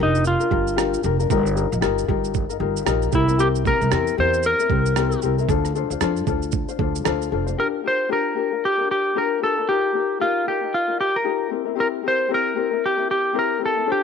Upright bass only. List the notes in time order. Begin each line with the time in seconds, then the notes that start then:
0.00 F1
0.51 G1
1.04 F1
1.30 G1
1.72 A#1
1.82 G1
2.09 G1
2.60 G1
2.87 A#1
3.13 C2
3.81 C2
3.92 E2
4.18 E2
4.70 C2
5.23 C2
5.49 D2
5.90 D2
6.00 F2
6.27 D2
6.79 D2
7.06 D2
7.32 F1